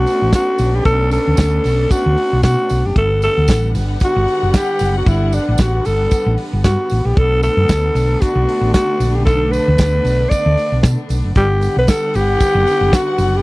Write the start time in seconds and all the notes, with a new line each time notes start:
Already playing: A3 B3 C#4 D4 F#4
0.06 open hi-hat, tambourine
0.22 A1
0.33 F#4, kick, snare, closed hi-hat, tambourine
0.58 A#1, open hi-hat, tambourine
0.75 G4
0.85 B1 A4, kick, closed hi-hat, tambourine
1.11 A4, open hi-hat, tambourine
1.27 D2
1.37 D2, kick, snare, closed hi-hat, tambourine
1.64 B1, open hi-hat, tambourine
1.90 F#4, kick, closed hi-hat, tambourine
2.06 D2
2.17 open hi-hat
2.33 B1
2.43 B2 F#4, kick, snare, closed hi-hat, tambourine
2.69 B1, open hi-hat, tambourine
2.85 F#1 G4
2.94 G1 D3 G3 B3 A4 F#5, kick, closed hi-hat
3.22 A4, open hi-hat, tambourine
3.38 D2
3.48 A1, kick, snare, closed hi-hat, tambourine
3.74 G1, open hi-hat, tambourine
4.00 F#4, kick, closed hi-hat, tambourine
4.16 G1
4.28 open hi-hat
4.43 F#1
4.54 G4, kick, snare, closed hi-hat, tambourine
4.79 F#1, open hi-hat, tambourine
4.98 F#4
5.06 G1 E4, kick, closed hi-hat, tambourine
5.33 D4, open hi-hat, tambourine
5.49 A1
5.58 A1 F#4, kick, snare, closed hi-hat, tambourine
5.85 G1 A4, open hi-hat, tambourine
6.11 kick, closed hi-hat, tambourine
6.26 A1
6.38 open hi-hat
6.53 G1
6.64 G2 F#4, kick, snare, closed hi-hat, tambourine
6.90 A1, open hi-hat, tambourine
7.05 A#1 G4
7.16 B1 D3 A3 D4 A4, kick, closed hi-hat
7.43 A4, open hi-hat, tambourine
7.57 F#2
7.68 D2, kick, snare, closed hi-hat, tambourine
7.95 B1, open hi-hat, tambourine
8.21 F#4, kick, closed hi-hat, tambourine
8.36 B1
8.49 open hi-hat
8.61 A1
8.73 F#4, kick, snare, closed hi-hat, tambourine
9.00 A#1, open hi-hat, tambourine
9.15 G4
9.25 B1 A4, kick, closed hi-hat, tambourine
9.51 B4, open hi-hat, tambourine
9.68 D2
9.78 D2, kick, snare, closed hi-hat, tambourine
10.05 B1, open hi-hat, tambourine
10.30 D5, kick, closed hi-hat, tambourine
10.46 D2
10.57 open hi-hat, tambourine
10.72 B1
10.83 B2, kick, snare, closed hi-hat, tambourine
11.09 B1, open hi-hat, tambourine
11.24 F#1
11.35 G1 D3 G3 B3 G4 F#5, kick, closed hi-hat, tambourine
11.61 open hi-hat, tambourine
11.77 B1 B4
11.87 A4, kick, snare, closed hi-hat, tambourine
12.14 G1 G4, open hi-hat, tambourine
12.40 kick, closed hi-hat, tambourine
12.55 F#1
12.66 open hi-hat, tambourine
12.81 F#1
12.93 F#4, kick, snare, closed hi-hat, tambourine
13.18 F#1, open hi-hat, tambourine
13.37 G4